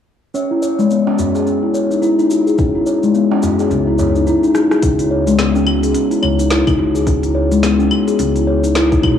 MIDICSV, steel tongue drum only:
0, 0, Header, 1, 2, 480
1, 0, Start_track
1, 0, Key_signature, 4, "minor"
1, 0, Tempo, 560748
1, 295, Time_signature, 4, 2, 24, 8
1, 7864, End_track
2, 0, Start_track
2, 0, Title_t, "Steel tongue drum"
2, 0, Program_c, 0, 114
2, 292, Note_on_c, 0, 61, 70
2, 428, Note_off_c, 0, 61, 0
2, 436, Note_on_c, 0, 64, 68
2, 525, Note_off_c, 0, 64, 0
2, 533, Note_on_c, 0, 73, 68
2, 662, Note_off_c, 0, 73, 0
2, 676, Note_on_c, 0, 56, 93
2, 770, Note_off_c, 0, 56, 0
2, 773, Note_on_c, 0, 59, 66
2, 909, Note_off_c, 0, 59, 0
2, 914, Note_on_c, 0, 61, 86
2, 971, Note_off_c, 0, 61, 0
2, 1012, Note_on_c, 0, 66, 64
2, 1149, Note_off_c, 0, 66, 0
2, 1155, Note_on_c, 0, 68, 60
2, 1249, Note_off_c, 0, 68, 0
2, 1253, Note_on_c, 0, 61, 71
2, 1389, Note_off_c, 0, 61, 0
2, 1394, Note_on_c, 0, 64, 64
2, 1484, Note_off_c, 0, 64, 0
2, 1492, Note_on_c, 0, 73, 61
2, 1621, Note_off_c, 0, 73, 0
2, 1632, Note_on_c, 0, 63, 65
2, 1728, Note_off_c, 0, 63, 0
2, 1729, Note_on_c, 0, 64, 90
2, 1813, Note_off_c, 0, 64, 0
2, 1873, Note_on_c, 0, 63, 85
2, 1963, Note_off_c, 0, 63, 0
2, 1970, Note_on_c, 0, 66, 70
2, 2107, Note_off_c, 0, 66, 0
2, 2113, Note_on_c, 0, 68, 66
2, 2208, Note_off_c, 0, 68, 0
2, 2210, Note_on_c, 0, 61, 75
2, 2347, Note_off_c, 0, 61, 0
2, 2355, Note_on_c, 0, 64, 68
2, 2444, Note_off_c, 0, 64, 0
2, 2453, Note_on_c, 0, 73, 72
2, 2582, Note_off_c, 0, 73, 0
2, 2596, Note_on_c, 0, 56, 90
2, 2690, Note_off_c, 0, 56, 0
2, 2694, Note_on_c, 0, 59, 71
2, 2829, Note_off_c, 0, 59, 0
2, 2835, Note_on_c, 0, 61, 91
2, 2892, Note_off_c, 0, 61, 0
2, 2934, Note_on_c, 0, 66, 67
2, 3069, Note_off_c, 0, 66, 0
2, 3075, Note_on_c, 0, 68, 65
2, 3169, Note_off_c, 0, 68, 0
2, 3173, Note_on_c, 0, 61, 77
2, 3309, Note_off_c, 0, 61, 0
2, 3314, Note_on_c, 0, 64, 71
2, 3404, Note_off_c, 0, 64, 0
2, 3412, Note_on_c, 0, 73, 65
2, 3541, Note_off_c, 0, 73, 0
2, 3556, Note_on_c, 0, 63, 70
2, 3650, Note_off_c, 0, 63, 0
2, 3653, Note_on_c, 0, 64, 95
2, 3735, Note_off_c, 0, 64, 0
2, 3793, Note_on_c, 0, 63, 94
2, 3883, Note_off_c, 0, 63, 0
2, 3893, Note_on_c, 0, 66, 73
2, 4029, Note_off_c, 0, 66, 0
2, 4034, Note_on_c, 0, 68, 69
2, 4129, Note_off_c, 0, 68, 0
2, 4133, Note_on_c, 0, 61, 73
2, 4269, Note_off_c, 0, 61, 0
2, 4276, Note_on_c, 0, 64, 73
2, 4365, Note_off_c, 0, 64, 0
2, 4374, Note_on_c, 0, 73, 73
2, 4502, Note_off_c, 0, 73, 0
2, 4515, Note_on_c, 0, 56, 99
2, 4609, Note_off_c, 0, 56, 0
2, 4613, Note_on_c, 0, 59, 73
2, 4749, Note_off_c, 0, 59, 0
2, 4753, Note_on_c, 0, 61, 99
2, 4811, Note_off_c, 0, 61, 0
2, 4851, Note_on_c, 0, 66, 73
2, 4988, Note_off_c, 0, 66, 0
2, 4993, Note_on_c, 0, 68, 67
2, 5088, Note_off_c, 0, 68, 0
2, 5090, Note_on_c, 0, 61, 75
2, 5227, Note_off_c, 0, 61, 0
2, 5232, Note_on_c, 0, 64, 66
2, 5323, Note_off_c, 0, 64, 0
2, 5328, Note_on_c, 0, 73, 70
2, 5459, Note_off_c, 0, 73, 0
2, 5470, Note_on_c, 0, 63, 70
2, 5567, Note_off_c, 0, 63, 0
2, 5568, Note_on_c, 0, 64, 94
2, 5652, Note_off_c, 0, 64, 0
2, 5707, Note_on_c, 0, 63, 91
2, 5800, Note_off_c, 0, 63, 0
2, 5808, Note_on_c, 0, 66, 75
2, 5947, Note_off_c, 0, 66, 0
2, 5950, Note_on_c, 0, 68, 71
2, 6047, Note_off_c, 0, 68, 0
2, 6049, Note_on_c, 0, 61, 80
2, 6187, Note_off_c, 0, 61, 0
2, 6192, Note_on_c, 0, 64, 67
2, 6283, Note_off_c, 0, 64, 0
2, 6289, Note_on_c, 0, 73, 75
2, 6420, Note_off_c, 0, 73, 0
2, 6434, Note_on_c, 0, 56, 91
2, 6529, Note_off_c, 0, 56, 0
2, 6531, Note_on_c, 0, 59, 76
2, 6668, Note_off_c, 0, 59, 0
2, 6671, Note_on_c, 0, 61, 94
2, 6730, Note_off_c, 0, 61, 0
2, 6771, Note_on_c, 0, 66, 71
2, 6908, Note_off_c, 0, 66, 0
2, 6912, Note_on_c, 0, 68, 70
2, 7008, Note_off_c, 0, 68, 0
2, 7012, Note_on_c, 0, 61, 78
2, 7148, Note_off_c, 0, 61, 0
2, 7154, Note_on_c, 0, 64, 67
2, 7244, Note_off_c, 0, 64, 0
2, 7251, Note_on_c, 0, 73, 70
2, 7381, Note_off_c, 0, 73, 0
2, 7393, Note_on_c, 0, 63, 68
2, 7488, Note_off_c, 0, 63, 0
2, 7491, Note_on_c, 0, 64, 99
2, 7574, Note_off_c, 0, 64, 0
2, 7634, Note_on_c, 0, 63, 90
2, 7724, Note_off_c, 0, 63, 0
2, 7731, Note_on_c, 0, 66, 71
2, 7864, Note_off_c, 0, 66, 0
2, 7864, End_track
0, 0, End_of_file